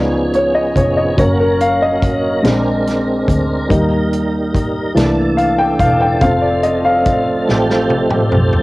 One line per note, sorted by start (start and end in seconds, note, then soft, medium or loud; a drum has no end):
0.00 0.71 C#2 medium
0.00 0.47 F3 soft
0.00 1.15 F3 medium
0.00 0.47 B3 soft
0.00 1.17 B3 medium
0.00 2.41 C#4 medium
0.00 0.48 D#4 medium
0.00 1.17 G#4 medium
0.34 0.56 C#5 medium
0.34 closed hi-hat soft
0.55 0.76 D#5 medium
0.76 1.14 F1 medium
0.76 0.98 C#5 medium
0.76 kick medium
0.76 closed hi-hat medium
0.97 1.18 D#5 medium
1.16 2.40 F#1 loud
1.16 2.39 F#3 soft
1.16 2.43 F#3 medium
1.16 2.39 A#3 soft
1.16 2.43 A#3 medium
1.16 2.40 C#4 medium
1.16 4.92 A#4 medium
1.16 1.40 C#5 medium
1.16 kick loud
1.16 closed hi-hat medium
1.40 1.61 A#4 medium
1.60 1.82 F5 medium
1.60 closed hi-hat medium
1.82 2.61 D#5 medium
2.02 kick loud
2.02 closed hi-hat medium
2.43 3.24 A#1 medium
2.43 3.65 G#3 medium
2.43 3.69 G#3 medium
2.43 3.65 C4 soft
2.43 3.69 C4 medium
2.43 3.66 D4 medium
2.43 3.69 D4 medium
2.43 snare loud
2.43 closed hi-hat medium
2.87 snare soft
2.87 closed hi-hat soft
3.28 3.66 D2 medium
3.28 kick medium
3.28 closed hi-hat medium
3.69 4.92 D#2 loud
3.69 4.25 G3 medium
3.69 4.95 G3 medium
3.69 4.25 A#3 medium
3.69 4.25 D#4 medium
3.69 4.96 D#4 medium
3.69 kick loud
3.69 closed hi-hat medium
4.13 closed hi-hat medium
4.54 kick medium
4.54 closed hi-hat medium
4.94 5.76 C2 loud
4.94 6.17 E3 medium
4.94 6.21 E3 medium
4.94 6.17 A3 soft
4.94 6.18 A#3 soft
4.94 6.20 D4 medium
4.94 6.18 D4 medium
4.94 8.63 A4 medium
4.94 snare loud
4.94 closed hi-hat medium
5.37 5.59 F5 medium
5.37 closed hi-hat soft
5.58 5.78 G5 medium
5.79 6.18 E1 medium
5.79 6.01 F5 medium
5.79 kick medium
5.79 closed hi-hat medium
6.01 6.22 G5 medium
6.21 7.44 F1 medium
6.21 8.63 F3 medium
6.21 7.44 F3 medium
6.21 8.63 A3 medium
6.21 7.44 A3 soft
6.21 7.49 C4 medium
6.21 7.45 C4 medium
6.21 6.43 F5 loud
6.21 kick loud
6.21 closed hi-hat medium
6.41 6.64 D5 medium
6.63 6.85 D#5 medium
6.63 closed hi-hat medium
6.85 7.65 F5 medium
7.05 kick loud
7.05 closed hi-hat medium
7.49 8.29 A1 medium
7.49 8.63 C4 medium
7.49 8.63 G4 medium
7.49 snare medium
7.70 snare soft
7.90 high tom medium
8.11 mid tom medium
8.32 8.63 B1 medium
8.32 mid tom medium
8.53 floor tom medium